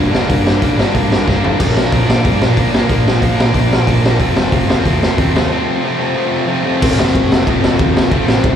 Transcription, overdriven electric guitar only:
0.00 0.13 G2 medium
0.00 0.12 D3 medium
0.00 0.11 G3 medium
0.00 0.12 A#3 medium
0.00 0.11 D4 medium
0.11 0.26 G2 medium
0.11 0.27 D3 medium
0.11 0.27 G3 medium
0.11 0.28 A#3 medium
0.11 0.29 D4 medium
0.28 0.59 G2 medium
0.28 0.59 D3 loud
0.28 0.60 G3 medium
0.28 0.61 A#3 loud
0.28 0.61 D4 loud
0.60 0.77 G2 medium
0.60 0.77 D3 medium
0.60 0.76 G3 medium
0.60 0.76 A#3 medium
0.60 0.76 D4 medium
0.77 0.93 G2 medium
0.77 0.93 D3 medium
0.77 0.94 G3 medium
0.77 0.95 A#3 medium
0.77 0.95 D4 medium
0.94 1.25 G2 medium
0.94 1.26 D3 medium
0.94 1.27 G3 medium
0.94 1.28 A#3 loud
0.94 1.29 D4 loud
1.27 1.44 G2 medium
1.27 1.44 D3 medium
1.27 1.43 G3 medium
1.27 1.44 A#3 medium
1.27 1.43 D4 medium
1.43 1.60 G2 medium
1.43 1.59 D3 medium
1.43 1.59 G3 medium
1.43 1.60 A#3 medium
1.43 1.61 D4 medium
1.59 1.92 A#2 medium
1.59 1.92 F3 medium
1.59 1.93 A#3 medium
1.59 1.93 D4 medium
1.92 2.08 A#2 medium
1.92 2.07 F3 medium
1.92 2.07 A#3 medium
1.92 2.06 D4 medium
2.07 2.22 A#2 medium
2.07 2.23 F3 medium
2.07 2.23 A#3 medium
2.07 2.24 D4 medium
2.23 2.55 A#2 medium
2.23 2.56 F3 medium
2.23 2.56 A#3 medium
2.23 2.56 D4 loud
2.56 2.71 A#2 medium
2.56 2.72 F3 medium
2.56 2.70 A#3 medium
2.56 2.70 D4 medium
2.72 2.86 A#2 medium
2.72 2.88 F3 medium
2.72 2.88 A#3 medium
2.72 2.88 D4 medium
2.88 3.19 A#2 medium
2.88 3.21 F3 loud
2.88 3.21 A#3 medium
2.88 3.21 D4 loud
3.21 3.37 A#2 medium
3.21 3.37 F3 medium
3.21 3.36 A#3 medium
3.21 3.35 D4 medium
3.37 3.51 A#2 medium
3.37 3.53 F3 medium
3.37 3.53 A#3 medium
3.37 3.54 D4 medium
3.53 3.85 A#2 medium
3.53 3.86 F3 medium
3.53 3.86 A#3 medium
3.53 3.86 D4 medium
3.86 4.02 A#2 medium
3.86 4.02 F3 medium
3.86 4.01 A#3 medium
3.86 4.00 D4 medium
4.01 4.19 A#2 medium
4.01 4.20 F3 medium
4.01 4.18 A#3 medium
4.01 4.18 D4 medium
4.19 4.51 F2 medium
4.19 4.51 C3 medium
4.19 4.53 F3 medium
4.19 4.53 A3 loud
4.19 4.54 C4 loud
4.52 4.70 F2 medium
4.52 4.68 C3 medium
4.52 4.69 F3 medium
4.52 4.68 A3 medium
4.52 4.68 C4 medium
4.68 4.84 F2 medium
4.68 4.84 C3 medium
4.68 4.85 F3 medium
4.68 4.86 A3 medium
4.68 4.86 C4 medium
4.84 5.17 F2 medium
4.84 5.18 C3 medium
4.84 5.19 F3 medium
4.84 5.19 A3 medium
4.84 5.19 C4 loud
5.18 5.36 F2 medium
5.18 5.34 C3 medium
5.18 5.35 F3 medium
5.18 5.34 A3 loud
5.18 5.34 C4 medium
5.34 5.49 F2 medium
5.34 5.50 C3 medium
5.34 5.50 F3 medium
5.34 5.51 A3 medium
5.34 5.51 C4 medium
5.50 5.81 F2 medium
5.50 5.82 C3 loud
5.50 5.83 F3 medium
5.50 5.83 A3 medium
5.50 5.84 C4 loud
5.83 6.00 F2 medium
5.83 5.99 C3 medium
5.83 5.99 F3 medium
5.83 5.99 A3 medium
5.83 5.98 C4 medium
5.99 6.14 F2 medium
5.99 6.15 C3 medium
5.99 6.16 F3 medium
5.99 6.16 A3 medium
5.99 6.17 C4 medium
6.16 6.46 F2 medium
6.16 6.47 C3 medium
6.16 6.47 F3 medium
6.16 6.48 A3 loud
6.16 6.48 C4 loud
6.47 6.64 F2 medium
6.47 6.64 C3 medium
6.47 6.64 F3 medium
6.47 6.62 A3 medium
6.47 6.62 C4 medium
6.63 6.78 F2 medium
6.63 6.79 C3 medium
6.63 6.80 F3 medium
6.63 6.80 A3 medium
6.63 6.80 C4 medium
6.79 7.44 F2 medium
6.79 7.45 C3 medium
6.79 7.48 F3 medium
6.79 7.48 A3 medium
6.79 7.46 C4 loud
7.46 8.09 F2 medium
7.46 8.11 C3 medium
7.46 8.12 F3 medium
7.46 8.13 A3 medium
7.46 8.12 C4 medium
8.11 8.56 F2 loud
8.11 8.56 C3 medium
8.11 8.56 F3 loud
8.11 8.56 A3 loud
8.11 8.56 C4 loud

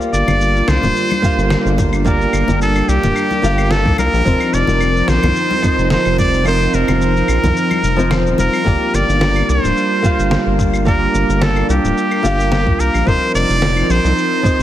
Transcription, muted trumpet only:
0.13 0.70 D5 loud
0.68 1.78 C5 loud
2.06 2.57 A#4 loud
2.61 2.90 A4 loud
2.89 3.73 G4 loud
3.71 3.99 A4 loud
3.99 4.55 A#4 loud
4.54 5.11 D5 loud
5.09 5.91 C5 loud
5.92 6.17 C5 loud
6.19 6.44 D5 loud
6.47 6.76 C5 loud
6.74 8.23 A#4 loud
8.40 8.96 A#4 loud
8.95 9.51 D5 loud
9.50 10.59 C5 loud
10.87 11.44 A#4 loud
11.42 11.69 A4 medium
11.70 12.82 G4 loud
12.80 13.09 A#4 loud
13.08 13.35 C5 loud
13.35 13.92 D5 loud
13.91 14.63 C5 loud

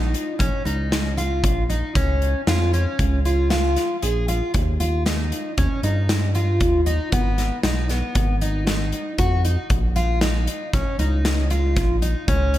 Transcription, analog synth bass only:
0.00 0.15 A#1 medium
0.40 0.50 A#1 loud
0.66 1.45 C#2 medium
1.44 1.83 A#1 medium
1.95 2.35 C#2 loud
2.47 2.86 F2 medium
2.99 3.77 C#2 medium
4.03 4.42 A#1 loud
4.54 5.32 D#2 medium
5.58 5.68 D#2 loud
5.83 6.62 G2 medium
6.61 7.00 D#2 medium
7.12 7.51 G#1 medium
7.64 8.03 B1 medium
8.15 8.93 G#1 loud
9.18 9.57 F2 medium
9.70 10.48 A#1 medium
10.73 10.83 A#1 medium
10.99 11.78 C#2 medium
11.76 12.15 A#1 medium
12.28 12.58 C#2 medium

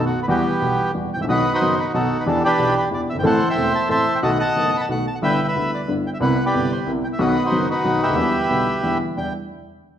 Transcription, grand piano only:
0.28 0.42 E2 medium
0.28 0.42 E3 medium
0.28 0.42 G3 medium
0.28 0.42 B3 medium
0.28 0.42 F#4 medium
0.61 0.76 B1 soft
0.61 0.75 B2 soft
0.61 0.75 E3 soft
0.61 0.75 G3 soft
0.61 0.76 B3 soft
0.61 0.76 F#4 soft
0.95 1.09 E2 soft
0.95 1.09 E3 soft
0.95 1.09 G3 soft
0.95 1.09 B3 soft
0.95 1.09 F#4 soft
1.16 1.20 G#1 soft
1.21 1.24 A1 soft
1.21 1.28 A#1 medium
1.28 1.42 B1 medium
1.28 1.42 B2 medium
1.28 1.42 D#3 medium
1.28 1.42 F#3 soft
1.28 1.42 B3 medium
1.28 1.42 F#4 medium
1.61 1.75 F#1 soft
1.61 1.75 F#2 soft
1.61 1.75 D#3 soft
1.61 1.75 F#3 soft
1.61 1.75 B3 soft
1.61 1.75 F#4 soft
1.94 2.08 B1 soft
1.94 2.08 B2 soft
1.94 2.07 D#3 soft
1.94 2.08 F#3 soft
1.94 2.08 B3 soft
1.94 2.08 F#4 soft
2.26 2.40 E2 medium
2.26 2.40 E3 medium
2.26 2.40 B3 medium
2.26 2.40 D4 medium
2.26 2.40 G4 medium
2.59 2.73 B1 soft
2.59 2.73 B2 soft
2.59 2.73 E3 soft
2.59 2.72 B3 soft
2.59 2.73 D4 soft
2.59 2.73 G4 soft
2.91 3.05 E2 soft
2.91 3.05 E3 soft
2.91 3.05 B3 soft
2.91 3.05 D4 soft
2.91 3.05 G4 soft
3.12 3.16 F#1 soft
3.12 3.20 G1 soft
3.20 3.24 G#1 medium
3.20 3.38 A1 medium
3.20 3.38 A2 medium
3.20 3.37 E3 medium
3.20 3.38 A3 medium
3.20 3.38 C4 medium
3.20 3.38 A4 medium
3.56 3.71 E1 soft
3.56 3.71 E2 soft
3.56 3.70 E3 soft
3.56 3.71 A3 soft
3.56 3.71 C4 soft
3.56 3.71 A4 soft
3.89 4.03 A1 soft
3.89 4.03 A2 soft
3.89 4.03 E3 soft
3.89 4.03 A3 soft
3.89 4.03 C4 soft
3.89 4.03 A4 soft
4.23 4.37 B1 medium
4.23 4.37 B2 medium
4.23 4.36 D#3 medium
4.23 4.37 A3 medium
4.23 4.37 B3 medium
4.23 4.37 F#4 medium
4.56 4.70 F#1 soft
4.56 4.70 F#2 soft
4.56 4.70 D#3 soft
4.56 4.70 A3 soft
4.56 4.70 B3 soft
4.56 4.70 F#4 soft
4.89 5.03 B1 soft
4.89 5.03 B2 soft
4.89 5.03 D#3 soft
4.89 5.03 A3 soft
4.89 5.03 B3 soft
4.89 5.03 F#4 soft
5.22 5.36 G1 medium
5.22 5.36 G2 medium
5.22 5.36 D3 medium
5.22 5.36 G3 medium
5.22 5.36 B3 soft
5.22 5.36 E4 medium
5.55 5.69 D2 soft
5.55 5.69 D3 soft
5.55 5.69 G3 soft
5.55 5.69 B3 soft
5.55 5.69 E4 soft
5.88 6.02 G1 soft
5.88 6.02 G2 soft
5.88 6.02 D3 soft
5.88 6.02 G3 soft
5.88 6.02 B3 soft
5.88 6.02 E4 soft
6.20 6.35 C2 medium
6.20 6.35 C3 medium
6.20 6.35 G3 medium
6.20 6.35 B3 soft
6.20 6.35 E4 medium
6.54 6.68 G1 soft
6.54 6.68 G2 soft
6.54 6.68 C3 soft
6.54 6.68 G3 soft
6.54 6.68 B3 soft
6.54 6.68 E4 soft
6.86 7.01 C2 soft
6.86 7.01 C3 soft
6.86 7.01 G3 soft
6.86 7.01 B3 soft
6.86 7.01 E4 soft
7.19 7.33 B1 medium
7.19 7.33 B2 medium
7.19 7.33 D#3 medium
7.19 7.33 F#3 medium
7.19 7.33 B3 medium
7.19 7.33 F#4 medium
7.51 7.66 F#1 soft
7.51 7.66 F#2 soft
7.51 7.66 D#3 soft
7.51 7.66 F#3 soft
7.51 7.66 B3 soft
7.51 7.66 F#4 soft
7.84 7.99 B1 soft
7.84 7.99 B2 soft
7.84 7.98 D#3 soft
7.84 7.99 F#3 soft
7.84 7.99 B3 soft
7.84 7.99 F#4 soft
8.06 8.10 C#2 soft
8.06 8.14 D2 soft
8.13 8.17 D#2 medium
8.13 8.31 E2 medium
8.13 8.30 D3 medium
8.13 8.31 E3 medium
8.13 8.31 G3 medium
8.13 8.31 B3 medium
8.13 8.31 E4 medium
8.50 8.64 B1 soft
8.50 8.64 B2 soft
8.50 8.64 D3 soft
8.50 8.64 G3 soft
8.50 8.64 B3 soft
8.50 8.64 E4 soft
8.83 8.98 E2 soft
8.83 8.98 D3 soft
8.83 8.98 E3 soft
8.83 8.98 G3 soft
8.83 8.98 B3 soft
8.83 8.98 E4 soft
9.17 9.31 E2 soft
9.17 9.31 G3 soft
9.17 9.31 D4 soft
9.17 9.31 E4 soft

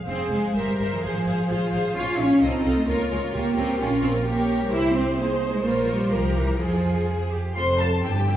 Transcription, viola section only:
0.07 0.31 G#4 soft
0.07 0.30 C5 soft
0.32 0.55 G#4 soft
0.32 0.54 C5 soft
0.55 0.78 A#4 soft
0.55 0.78 C5 soft
0.79 1.03 A#4 soft
0.79 1.02 C5 soft
1.04 1.25 G#4 soft
1.04 1.25 C5 soft
1.26 1.48 G#4 soft
1.26 1.48 C5 soft
1.49 1.72 G#4 soft
1.49 1.72 C5 soft
1.73 1.96 G#4 soft
1.73 1.96 C5 soft
1.96 2.19 F4 soft
1.96 2.18 C#5 soft
2.20 2.42 F4 soft
2.20 2.42 C#5 soft
2.43 2.64 F4 medium
2.43 2.64 A4 medium
2.65 2.87 F4 medium
2.65 2.88 A4 medium
2.88 3.09 F4 medium
2.88 3.09 A#4 medium
3.10 3.33 F4 soft
3.10 3.33 A#4 soft
3.34 3.55 F4 medium
3.34 3.55 A#4 medium
3.56 3.78 F4 medium
3.56 3.79 A#4 medium
3.79 4.22 F4 medium
3.79 4.22 A#4 soft
4.25 4.70 G4 medium
4.25 4.71 A#4 medium
4.72 5.18 G4 medium
5.19 5.63 D#4 soft
5.19 5.64 G#4 soft
5.64 6.08 F4 medium
5.64 6.08 A#4 soft
6.11 6.59 G4 soft
6.11 6.59 A#4 soft
6.59 7.02 F4 soft
6.59 7.03 G#4 soft
7.09 7.31 G#4 medium
7.32 7.56 G4 soft
7.56 7.64 A3 soft
7.56 7.64 F4 soft
7.80 7.88 A3 soft
7.80 7.88 F4 soft
8.04 8.12 C4 soft
8.04 8.12 E4 soft
8.27 8.36 C4 soft
8.27 8.35 E4 soft

